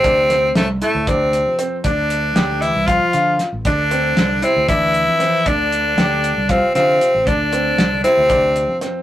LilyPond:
<<
  \new Staff \with { instrumentName = "Grand piano" } { \time 7/8 \key d \minor \tempo 4 = 116 d'8 c'4 e'8 d'4 c'8 | d'4 g'4 f'8 f'4 | d'8 c'4 e'8 d'4 c'8 | d'4 g'4 f'8 f'4 |
d'8 c'4 e'8 d'4 c'8 | }
  \new Staff \with { instrumentName = "Tenor saxophone" } { \time 7/8 \key d \minor c'4 a8 a8 c'4 r8 | d'4. e'8 f'4 r8 | d'4. c'8 e'4. | d'2 c'8 c'4 |
d'4. c'4. r8 | }
  \new Staff \with { instrumentName = "Trombone" } { \clef bass \time 7/8 \key d \minor c4 a,8 a,8 c4 r8 | d4. e8 f4 r8 | d4. c8 e4. | d2 c8 c4 |
d4. c4. r8 | }
  \new Staff \with { instrumentName = "Fretless electric bass" } { \clef bass \time 7/8 \key d \minor d,4 c,8 r16 d,4 f,8. | d,4 d,8. c,8 r16 d8 r16 a,,16 | d,4 c,8 r16 d,4 f,8. | d,4 d,8. c,8 r16 d8 r16 a,,16 |
d,4 c,8 r16 d,4 f,8. | }
  \new DrumStaff \with { instrumentName = "Drums" } \drummode { \time 7/8 <hh bd>8 <hh sn>8 <hh sn>8 hh8 <hh bd>8 hh8 hh8 | <hh bd>8 hh8 <hh sn>8 hh8 <hh bd>8 hh8 <hh sn>8 | <hh bd>8 hh8 <hh sn>8 hh8 <hh bd sn>8 hh8 <hh sn>8 | <hh bd>8 hh8 <hh sn>8 hh8 <hh bd>8 <hh sn>8 hh8 |
<hh bd>8 hh8 <hh sn>8 hh8 <hh bd>8 hh8 <hh sn>8 | }
>>